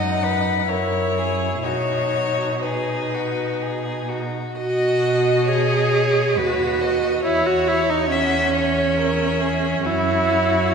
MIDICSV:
0, 0, Header, 1, 5, 480
1, 0, Start_track
1, 0, Key_signature, 5, "major"
1, 0, Tempo, 943396
1, 834, Time_signature, 3, 2, 24, 8
1, 835, Tempo, 975610
1, 2275, Tempo, 900901
1, 3235, Tempo, 873362
1, 5639, End_track
2, 0, Start_track
2, 0, Title_t, "Violin"
2, 0, Program_c, 0, 40
2, 0, Note_on_c, 0, 78, 58
2, 347, Note_on_c, 0, 73, 57
2, 355, Note_off_c, 0, 78, 0
2, 824, Note_off_c, 0, 73, 0
2, 827, Note_on_c, 0, 73, 64
2, 1319, Note_on_c, 0, 71, 46
2, 1327, Note_off_c, 0, 73, 0
2, 2038, Note_off_c, 0, 71, 0
2, 2273, Note_on_c, 0, 75, 49
2, 3238, Note_on_c, 0, 73, 47
2, 3246, Note_off_c, 0, 75, 0
2, 3485, Note_on_c, 0, 71, 48
2, 3493, Note_off_c, 0, 73, 0
2, 3707, Note_off_c, 0, 71, 0
2, 3710, Note_on_c, 0, 73, 50
2, 4192, Note_on_c, 0, 78, 52
2, 4200, Note_off_c, 0, 73, 0
2, 4429, Note_on_c, 0, 76, 49
2, 4437, Note_off_c, 0, 78, 0
2, 5149, Note_off_c, 0, 76, 0
2, 5152, Note_on_c, 0, 73, 60
2, 5639, Note_off_c, 0, 73, 0
2, 5639, End_track
3, 0, Start_track
3, 0, Title_t, "Violin"
3, 0, Program_c, 1, 40
3, 0, Note_on_c, 1, 75, 50
3, 119, Note_on_c, 1, 71, 45
3, 126, Note_off_c, 1, 75, 0
3, 350, Note_on_c, 1, 70, 49
3, 358, Note_off_c, 1, 71, 0
3, 599, Note_on_c, 1, 68, 42
3, 606, Note_off_c, 1, 70, 0
3, 837, Note_on_c, 1, 66, 42
3, 845, Note_off_c, 1, 68, 0
3, 1277, Note_off_c, 1, 66, 0
3, 1326, Note_on_c, 1, 68, 52
3, 1572, Note_on_c, 1, 66, 40
3, 1579, Note_off_c, 1, 68, 0
3, 1804, Note_on_c, 1, 68, 47
3, 1811, Note_off_c, 1, 66, 0
3, 2039, Note_on_c, 1, 66, 41
3, 2046, Note_off_c, 1, 68, 0
3, 2275, Note_off_c, 1, 66, 0
3, 2280, Note_on_c, 1, 75, 57
3, 2742, Note_off_c, 1, 75, 0
3, 2763, Note_on_c, 1, 73, 53
3, 3234, Note_on_c, 1, 71, 51
3, 3242, Note_off_c, 1, 73, 0
3, 3478, Note_on_c, 1, 75, 55
3, 3486, Note_off_c, 1, 71, 0
3, 3705, Note_off_c, 1, 75, 0
3, 3709, Note_on_c, 1, 73, 61
3, 4195, Note_on_c, 1, 76, 60
3, 4203, Note_off_c, 1, 73, 0
3, 4425, Note_off_c, 1, 76, 0
3, 4428, Note_on_c, 1, 73, 52
3, 4664, Note_on_c, 1, 70, 58
3, 4673, Note_off_c, 1, 73, 0
3, 4900, Note_on_c, 1, 68, 47
3, 4908, Note_off_c, 1, 70, 0
3, 5148, Note_off_c, 1, 68, 0
3, 5150, Note_on_c, 1, 66, 58
3, 5639, Note_off_c, 1, 66, 0
3, 5639, End_track
4, 0, Start_track
4, 0, Title_t, "Viola"
4, 0, Program_c, 2, 41
4, 0, Note_on_c, 2, 63, 44
4, 346, Note_off_c, 2, 63, 0
4, 349, Note_on_c, 2, 64, 42
4, 832, Note_on_c, 2, 63, 37
4, 839, Note_off_c, 2, 64, 0
4, 1321, Note_off_c, 2, 63, 0
4, 1324, Note_on_c, 2, 63, 43
4, 2153, Note_off_c, 2, 63, 0
4, 2278, Note_on_c, 2, 66, 62
4, 2762, Note_on_c, 2, 68, 70
4, 2770, Note_off_c, 2, 66, 0
4, 3239, Note_on_c, 2, 66, 68
4, 3247, Note_off_c, 2, 68, 0
4, 3713, Note_off_c, 2, 66, 0
4, 3717, Note_on_c, 2, 64, 71
4, 3836, Note_on_c, 2, 66, 64
4, 3844, Note_off_c, 2, 64, 0
4, 3953, Note_on_c, 2, 64, 67
4, 3961, Note_off_c, 2, 66, 0
4, 4077, Note_on_c, 2, 63, 61
4, 4085, Note_off_c, 2, 64, 0
4, 4191, Note_off_c, 2, 63, 0
4, 4194, Note_on_c, 2, 61, 71
4, 5155, Note_on_c, 2, 64, 75
4, 5163, Note_off_c, 2, 61, 0
4, 5639, Note_off_c, 2, 64, 0
4, 5639, End_track
5, 0, Start_track
5, 0, Title_t, "Cello"
5, 0, Program_c, 3, 42
5, 0, Note_on_c, 3, 42, 48
5, 342, Note_off_c, 3, 42, 0
5, 350, Note_on_c, 3, 42, 42
5, 825, Note_off_c, 3, 42, 0
5, 835, Note_on_c, 3, 47, 41
5, 2151, Note_off_c, 3, 47, 0
5, 2272, Note_on_c, 3, 47, 52
5, 3240, Note_on_c, 3, 39, 48
5, 3249, Note_off_c, 3, 47, 0
5, 3713, Note_on_c, 3, 40, 51
5, 3722, Note_off_c, 3, 39, 0
5, 5148, Note_off_c, 3, 40, 0
5, 5151, Note_on_c, 3, 42, 56
5, 5639, Note_off_c, 3, 42, 0
5, 5639, End_track
0, 0, End_of_file